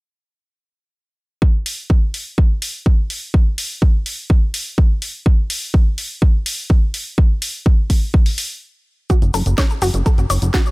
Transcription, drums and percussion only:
1.42 kick
1.66 open hi-hat
1.90 kick
2.14 open hi-hat
2.38 kick
2.62 open hi-hat
2.86 kick
3.10 open hi-hat
3.34 kick
3.58 open hi-hat
3.82 kick
4.06 open hi-hat
4.30 kick
4.54 open hi-hat
4.78 kick
5.02 open hi-hat
5.26 kick
5.50 open hi-hat
5.74 kick
5.98 open hi-hat
6.22 kick
6.46 open hi-hat
6.70 kick
6.94 open hi-hat
7.18 kick
7.42 open hi-hat
7.66 kick
7.90 kick, open hi-hat
8.14 kick
8.26 open hi-hat
8.38 open hi-hat
9.10 kick, closed hi-hat, cabasa
9.22 closed hi-hat, cabasa
9.34 open hi-hat, cabasa
9.46 closed hi-hat, cabasa
9.58 kick, snare, closed hi-hat, cabasa
9.70 closed hi-hat, cabasa
9.82 open hi-hat, cabasa
9.94 closed hi-hat, cabasa
10.06 kick, closed hi-hat, cabasa
10.18 closed hi-hat, cabasa
10.30 open hi-hat, cabasa
10.42 closed hi-hat, cabasa
10.54 kick, snare, closed hi-hat, cabasa
10.66 closed hi-hat, cabasa

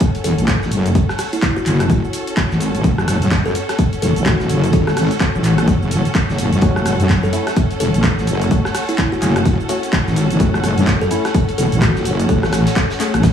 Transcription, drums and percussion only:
0.00 kick, closed hi-hat, cabasa
0.15 open hi-hat, cabasa
0.24 closed hi-hat, open hi-hat, cabasa
0.38 closed hi-hat, cabasa
0.47 kick, snare, clap, closed hi-hat, cabasa
0.62 snare, cabasa
0.72 closed hi-hat, open hi-hat, cabasa
0.86 closed hi-hat, cabasa
0.95 kick, closed hi-hat, cabasa
1.09 cross-stick, snare, cabasa
1.18 cross-stick, snare, open hi-hat, cabasa
1.33 closed hi-hat, cabasa
1.42 kick, snare, clap, closed hi-hat, cabasa
1.57 cabasa
1.66 clap, closed hi-hat, open hi-hat, cabasa
1.80 cross-stick, closed hi-hat, cabasa
1.90 kick, closed hi-hat, cabasa
2.05 cabasa
2.13 closed hi-hat, open hi-hat, cabasa
2.27 closed hi-hat, cabasa
2.37 kick, snare, clap, closed hi-hat, cabasa
2.51 snare, cabasa
2.61 closed hi-hat, open hi-hat, cabasa
2.75 closed hi-hat, cabasa
2.84 kick, closed hi-hat, cabasa
2.98 cross-stick, cabasa
3.08 cross-stick, closed hi-hat, open hi-hat, cabasa
3.22 closed hi-hat, cabasa
3.31 kick, snare, clap, closed hi-hat, cabasa
3.45 closed hi-hat, cabasa
3.55 closed hi-hat, open hi-hat, cabasa
3.69 cross-stick, snare, closed hi-hat, cabasa
3.78 kick, closed hi-hat, cabasa
3.93 open hi-hat, cabasa
4.02 closed hi-hat, open hi-hat, cabasa
4.16 closed hi-hat, cabasa
4.26 kick, snare, clap, closed hi-hat, cabasa
4.40 snare, cabasa
4.49 closed hi-hat, open hi-hat, cabasa
4.64 closed hi-hat, cabasa
4.73 kick, closed hi-hat, cabasa
4.87 cross-stick, snare, cabasa
4.96 cross-stick, snare, open hi-hat, cabasa
5.11 closed hi-hat, cabasa
5.20 kick, snare, clap, closed hi-hat, cabasa
5.35 cabasa
5.43 clap, closed hi-hat, open hi-hat, cabasa
5.58 cross-stick, closed hi-hat, cabasa
5.68 kick, closed hi-hat, cabasa
5.82 cabasa
5.91 closed hi-hat, open hi-hat, cabasa
6.05 closed hi-hat, cabasa
6.15 kick, snare, clap, closed hi-hat, cabasa
6.29 snare, cabasa
6.38 closed hi-hat, open hi-hat, cabasa
6.53 closed hi-hat, cabasa
6.61 kick, closed hi-hat, cabasa
6.76 cross-stick, cabasa
6.85 cross-stick, closed hi-hat, open hi-hat, cabasa
7.00 closed hi-hat, cabasa
7.09 kick, snare, clap, closed hi-hat, cabasa
7.24 closed hi-hat, cabasa
7.33 closed hi-hat, open hi-hat, cabasa
7.47 cross-stick, snare, closed hi-hat, cabasa
7.56 kick, closed hi-hat, cabasa
7.71 open hi-hat, cabasa
7.80 closed hi-hat, open hi-hat, cabasa
7.94 closed hi-hat, cabasa
8.03 kick, snare, clap, closed hi-hat, cabasa
8.18 snare, cabasa
8.27 closed hi-hat, open hi-hat, cabasa
8.41 closed hi-hat, cabasa
8.51 kick, closed hi-hat, cabasa
8.65 cross-stick, snare, cabasa
8.75 cross-stick, snare, open hi-hat, cabasa
8.89 closed hi-hat, cabasa
8.98 kick, snare, clap, closed hi-hat, cabasa
9.13 cabasa
9.22 clap, closed hi-hat, open hi-hat, cabasa
9.36 cross-stick, closed hi-hat, cabasa
9.45 kick, closed hi-hat, cabasa
9.60 cabasa
9.69 closed hi-hat, open hi-hat, cabasa
9.83 closed hi-hat, cabasa
9.93 kick, snare, clap, closed hi-hat, cabasa
10.07 snare, cabasa
10.16 closed hi-hat, open hi-hat, cabasa
10.30 closed hi-hat, cabasa
10.40 kick, closed hi-hat, cabasa
10.54 cross-stick, cabasa
10.64 cross-stick, closed hi-hat, open hi-hat, cabasa
10.78 closed hi-hat, cabasa
10.87 kick, snare, clap, closed hi-hat, cabasa
11.01 closed hi-hat, cabasa
11.11 closed hi-hat, open hi-hat, cabasa
11.25 cross-stick, snare, closed hi-hat, cabasa
11.34 kick, closed hi-hat, cabasa
11.49 open hi-hat, cabasa
11.58 closed hi-hat, open hi-hat, cabasa
11.72 closed hi-hat, cabasa
11.81 kick, snare, clap, closed hi-hat, cabasa
11.96 snare, cabasa
12.05 closed hi-hat, open hi-hat, cabasa
12.20 closed hi-hat, cabasa
12.29 kick, closed hi-hat, cabasa
12.43 cross-stick, snare, cabasa
12.52 cross-stick, snare, closed hi-hat, open hi-hat, cabasa
12.66 snare, closed hi-hat, cabasa
12.75 kick, snare, clap, closed hi-hat, cabasa
12.90 snare, closed hi-hat, cabasa
12.99 snare, clap, closed hi-hat, open hi-hat, cabasa
13.14 cross-stick, closed hi-hat, cabasa
13.23 kick, snare, closed hi-hat, cabasa

